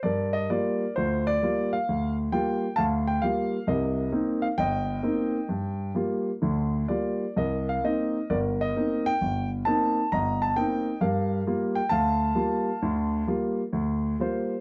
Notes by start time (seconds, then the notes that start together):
0.03 G2 A#4 D5
0.33 D#5
0.50 G3 A#3 F4 D5
0.96 D2 F4 C5
1.27 D5
1.42 G3 A#3 F4
1.73 F5
1.89 D2
2.32 G3 A#3 F4 G5
2.76 D2 F5 A5
3.07 G5
3.22 G3 A#3 F4 F5
3.67 C2 C3 A#4 D#5
4.12 A#3 C4 D#4
4.42 F5
4.58 G1 D#5 G5
5.03 A#3 C4 D#4
5.49 G2
5.95 G3 A#3 F4
6.42 D2 D3
6.88 G3 A#3 F4 D5
7.36 C2 A#4 D#5
7.69 F5
7.84 A#3 C4 D#4 D#5
8.30 G1 A#4 D5
8.61 D#5
8.76 A#3 C4 D#4
9.06 G5
9.21 G1
9.65 A#3 C4 D#4 A5
10.12 G1 D#5 A#5
10.42 A5
10.56 A#3 C4 D#4 G5
11.01 G2 G3 A#4 F5
11.47 G3 A#3 F4
11.75 G5
11.89 D2 F5 A5
12.35 G3 A#3 F4
12.82 D2 D3
13.27 G3 A#3 F4
13.73 D2
14.20 G3 A#3 F4 C5